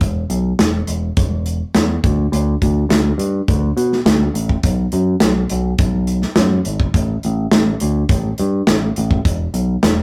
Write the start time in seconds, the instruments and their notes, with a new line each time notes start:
0.01 picked electric bass E1, kick, closed hi-hat
0.30 picked electric bass B1, closed hi-hat
0.59 picked electric bass E1, snare, closed hi-hat
0.87 picked electric bass E1, closed hi-hat
1.17 picked electric bass E1, kick, closed hi-hat
1.46 closed hi-hat
1.75 picked electric bass E2, snare, closed hi-hat
2.04 picked electric bass D2, kick, closed hi-hat
2.32 picked electric bass D2, closed hi-hat
2.62 picked electric bass D2, kick, closed hi-hat
2.89 picked electric bass D2, snare, closed hi-hat
3.18 picked electric bass G2, closed hi-hat
3.48 picked electric bass D2, kick, closed hi-hat
3.77 picked electric bass B2, closed hi-hat
3.92 snare
4.06 picked electric bass D2, snare, closed hi-hat
4.34 picked electric bass A1, closed hi-hat
4.49 kick
4.63 picked electric bass B1, kick, closed hi-hat
4.92 picked electric bass F#2, closed hi-hat
5.20 picked electric bass B1, snare, closed hi-hat
5.50 picked electric bass B1, closed hi-hat
5.78 picked electric bass B1, kick, closed hi-hat
6.07 closed hi-hat
6.22 snare
6.36 picked electric bass F#2, snare, closed hi-hat
6.65 picked electric bass G#1, closed hi-hat
6.80 kick
6.94 picked electric bass A1, kick, closed hi-hat
7.23 picked electric bass A1, closed hi-hat
7.51 picked electric bass A1, snare, closed hi-hat
7.80 picked electric bass D2, closed hi-hat
8.09 picked electric bass A1, kick, closed hi-hat
8.38 picked electric bass G2, closed hi-hat
8.67 picked electric bass A1, snare, closed hi-hat
8.96 picked electric bass A1, closed hi-hat
9.11 kick
9.25 picked electric bass E1, kick, closed hi-hat
9.54 picked electric bass B1, closed hi-hat
9.83 picked electric bass E1, snare, closed hi-hat